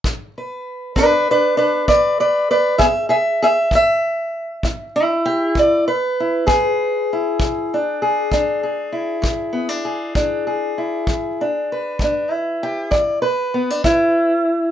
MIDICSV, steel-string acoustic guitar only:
0, 0, Header, 1, 2, 480
1, 0, Start_track
1, 0, Tempo, 612870
1, 38, Time_signature, 12, 3, 24, 8
1, 11524, End_track
2, 0, Start_track
2, 0, Title_t, "Steel-string acoustic guitar"
2, 0, Program_c, 0, 25
2, 46, Note_on_c, 0, 52, 66
2, 295, Note_on_c, 0, 71, 42
2, 472, Note_off_c, 0, 52, 0
2, 750, Note_on_c, 0, 62, 69
2, 755, Note_on_c, 0, 59, 60
2, 767, Note_off_c, 0, 71, 0
2, 770, Note_on_c, 0, 71, 82
2, 993, Note_off_c, 0, 62, 0
2, 1002, Note_off_c, 0, 71, 0
2, 1025, Note_on_c, 0, 62, 63
2, 1026, Note_on_c, 0, 71, 79
2, 1185, Note_off_c, 0, 59, 0
2, 1221, Note_off_c, 0, 62, 0
2, 1230, Note_on_c, 0, 62, 64
2, 1232, Note_off_c, 0, 71, 0
2, 1242, Note_on_c, 0, 71, 74
2, 1461, Note_off_c, 0, 71, 0
2, 1472, Note_off_c, 0, 62, 0
2, 1472, Note_on_c, 0, 71, 70
2, 1473, Note_on_c, 0, 52, 68
2, 1476, Note_on_c, 0, 74, 82
2, 1712, Note_off_c, 0, 71, 0
2, 1714, Note_off_c, 0, 74, 0
2, 1723, Note_on_c, 0, 71, 66
2, 1727, Note_on_c, 0, 74, 76
2, 1905, Note_off_c, 0, 52, 0
2, 1955, Note_off_c, 0, 71, 0
2, 1956, Note_off_c, 0, 74, 0
2, 1963, Note_on_c, 0, 71, 70
2, 1967, Note_on_c, 0, 74, 68
2, 2176, Note_off_c, 0, 74, 0
2, 2180, Note_on_c, 0, 76, 85
2, 2184, Note_on_c, 0, 68, 61
2, 2198, Note_off_c, 0, 71, 0
2, 2200, Note_on_c, 0, 59, 59
2, 2226, Note_off_c, 0, 68, 0
2, 2418, Note_off_c, 0, 76, 0
2, 2421, Note_on_c, 0, 68, 74
2, 2428, Note_on_c, 0, 76, 79
2, 2465, Note_off_c, 0, 68, 0
2, 2628, Note_off_c, 0, 59, 0
2, 2670, Note_off_c, 0, 76, 0
2, 2682, Note_on_c, 0, 68, 79
2, 2691, Note_on_c, 0, 76, 82
2, 2715, Note_off_c, 0, 68, 0
2, 2921, Note_off_c, 0, 76, 0
2, 2922, Note_on_c, 0, 52, 67
2, 2938, Note_on_c, 0, 76, 86
2, 3348, Note_off_c, 0, 52, 0
2, 3638, Note_on_c, 0, 64, 59
2, 3874, Note_off_c, 0, 64, 0
2, 3883, Note_on_c, 0, 64, 88
2, 3884, Note_off_c, 0, 76, 0
2, 4116, Note_on_c, 0, 67, 80
2, 4353, Note_off_c, 0, 67, 0
2, 4363, Note_on_c, 0, 52, 68
2, 4378, Note_on_c, 0, 74, 73
2, 4597, Note_off_c, 0, 64, 0
2, 4599, Note_off_c, 0, 74, 0
2, 4603, Note_on_c, 0, 71, 84
2, 4789, Note_off_c, 0, 52, 0
2, 4858, Note_on_c, 0, 64, 42
2, 5064, Note_on_c, 0, 68, 78
2, 5074, Note_off_c, 0, 64, 0
2, 5077, Note_on_c, 0, 64, 61
2, 5507, Note_off_c, 0, 64, 0
2, 5557, Note_off_c, 0, 71, 0
2, 5583, Note_on_c, 0, 64, 42
2, 5807, Note_on_c, 0, 52, 64
2, 6061, Note_on_c, 0, 62, 45
2, 6084, Note_off_c, 0, 64, 0
2, 6232, Note_off_c, 0, 52, 0
2, 6269, Note_off_c, 0, 68, 0
2, 6281, Note_on_c, 0, 68, 49
2, 6515, Note_on_c, 0, 56, 60
2, 6521, Note_off_c, 0, 62, 0
2, 6525, Note_on_c, 0, 62, 46
2, 6758, Note_off_c, 0, 68, 0
2, 6762, Note_on_c, 0, 68, 41
2, 6947, Note_off_c, 0, 56, 0
2, 6990, Note_on_c, 0, 64, 45
2, 7221, Note_on_c, 0, 52, 68
2, 7458, Note_off_c, 0, 62, 0
2, 7461, Note_on_c, 0, 59, 43
2, 7587, Note_off_c, 0, 59, 0
2, 7587, Note_on_c, 0, 62, 41
2, 7660, Note_off_c, 0, 52, 0
2, 7704, Note_off_c, 0, 68, 0
2, 7714, Note_on_c, 0, 68, 45
2, 7944, Note_off_c, 0, 62, 0
2, 7952, Note_on_c, 0, 56, 61
2, 7955, Note_on_c, 0, 62, 46
2, 8190, Note_off_c, 0, 68, 0
2, 8199, Note_on_c, 0, 68, 45
2, 8386, Note_off_c, 0, 56, 0
2, 8439, Note_off_c, 0, 64, 0
2, 8442, Note_on_c, 0, 64, 38
2, 8646, Note_off_c, 0, 62, 0
2, 8682, Note_on_c, 0, 52, 62
2, 8937, Note_on_c, 0, 62, 40
2, 8961, Note_off_c, 0, 64, 0
2, 9111, Note_off_c, 0, 52, 0
2, 9158, Note_off_c, 0, 68, 0
2, 9180, Note_on_c, 0, 71, 47
2, 9407, Note_off_c, 0, 62, 0
2, 9410, Note_on_c, 0, 56, 63
2, 9426, Note_on_c, 0, 62, 45
2, 9642, Note_off_c, 0, 62, 0
2, 9642, Note_on_c, 0, 64, 83
2, 9835, Note_off_c, 0, 56, 0
2, 9892, Note_on_c, 0, 67, 80
2, 10107, Note_off_c, 0, 71, 0
2, 10110, Note_on_c, 0, 74, 68
2, 10124, Note_off_c, 0, 67, 0
2, 10126, Note_on_c, 0, 52, 66
2, 10350, Note_off_c, 0, 74, 0
2, 10353, Note_on_c, 0, 71, 67
2, 10359, Note_off_c, 0, 64, 0
2, 10553, Note_off_c, 0, 52, 0
2, 10605, Note_on_c, 0, 59, 41
2, 10733, Note_off_c, 0, 59, 0
2, 10733, Note_on_c, 0, 62, 33
2, 10840, Note_off_c, 0, 62, 0
2, 10843, Note_on_c, 0, 64, 84
2, 10852, Note_on_c, 0, 56, 59
2, 11276, Note_off_c, 0, 56, 0
2, 11314, Note_off_c, 0, 71, 0
2, 11524, Note_off_c, 0, 64, 0
2, 11524, End_track
0, 0, End_of_file